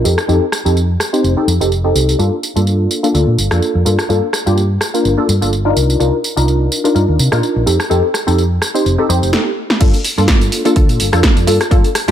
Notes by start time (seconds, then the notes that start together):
0.04 F2 C4 D#4 G4 A4, tambourine
0.18 cross-stick, tambourine
0.28 F2 C4 D#4 G4 A4, tambourine
0.52 cross-stick, tambourine
0.65 F2 C4 D#4 G4 A4, tambourine
0.77 tambourine
1.00 cross-stick, tambourine
1.13 C4 D#4 G4 C5, tambourine
1.24 F1, tambourine
1.37 C4 D#4 G4 A4
1.47 F2, tambourine
1.60 F1 C4 D#4 G4 A4, tambourine
1.72 tambourine
1.84 C4 D#4 G4 A4
1.95 C2, tambourine
2.09 tambourine
2.19 G2 A#3 D4 F4 A4, tambourine
2.43 tambourine
2.56 G2 A#3 D4 F4 A4, tambourine
2.67 tambourine
2.91 tambourine
3.03 A#3 D4 F4 A4, tambourine
3.14 D2 A#3 D4 F4 A4, tambourine
3.27 A#2
3.38 G1, tambourine
3.51 F2 A#3 D4 F4 A4, cross-stick, tambourine
3.62 tambourine
3.75 F2
3.85 G2 A#3 D4 F4 A4, tambourine
3.99 cross-stick, tambourine
4.09 G2 A#3 D4 F4 A4, tambourine
4.33 cross-stick, tambourine
4.46 G2 A#3 D4 F4 G4, tambourine
4.58 tambourine
4.81 cross-stick, tambourine
4.94 A#3 D4 F4 A#4, tambourine
5.05 G1, tambourine
5.17 A#3 D4 F4 A4, muted fingered electric bass stroke
5.29 G2, tambourine
5.41 G1 A#3 D4 F4 A4, tambourine
5.53 tambourine
5.65 D4 D#4 F4 A#4
5.76 C2, tambourine
5.90 tambourine
6.00 C2 D4 D#4 F4 A#4, tambourine
6.24 tambourine
6.36 C2 D4 D#4 F4 A#4, tambourine
6.48 tambourine
6.72 tambourine
6.84 D4 D#4 F4 A#4, tambourine
6.95 G2 D4 D#4 F4 A#4, tambourine
7.08 D#2
7.19 C3, tambourine
7.32 A#2 D4 D#4 F4 A#4, cross-stick, tambourine
7.43 tambourine
7.56 A#1
7.66 F2 C4 D#4 G4 A4, tambourine
7.80 cross-stick, tambourine
7.90 F2 C4 D#4 G4 A4, tambourine
8.14 cross-stick, tambourine
8.27 F2 C4 D#4 G4 A4, tambourine
8.38 tambourine
8.62 cross-stick, tambourine
8.74 C4 D#4 G4 C5, tambourine
8.86 F1, tambourine
8.98 C4 D#4 G4 A4
9.09 F2 C4 D#4 G4 C5, tambourine
9.23 F1, tambourine
9.33 C4 D#4 G4 A4, snare
9.70 snare
9.80 G2 A#3 D4 F4 A4, kick, closed hi-hat, crash, tambourine
9.94 closed hi-hat, tambourine
10.04 open hi-hat, tambourine
10.17 G2 A#3 D4 F4 A4, tambourine
10.28 kick, snare, closed hi-hat, tambourine
10.41 closed hi-hat, tambourine
10.52 open hi-hat, tambourine
10.65 A#3 D4 F4 A4, closed hi-hat, tambourine
10.76 D2 A#3 D4 F4 A4, kick, closed hi-hat, tambourine
10.89 A#2, closed hi-hat, tambourine
11.00 G1, open hi-hat, tambourine
11.12 F2 A#3 D4 F4 A4, cross-stick, closed hi-hat, tambourine
11.23 kick, snare, closed hi-hat, tambourine
11.37 F2, closed hi-hat, tambourine
11.47 G2 A#3 D4 F4 A4, open hi-hat, tambourine
11.61 cross-stick, closed hi-hat, tambourine
11.71 G2 A#3 D4 F4 A4, kick, closed hi-hat, tambourine
11.84 closed hi-hat, tambourine
11.95 cross-stick, open hi-hat, tambourine
12.08 G2 A#3 D4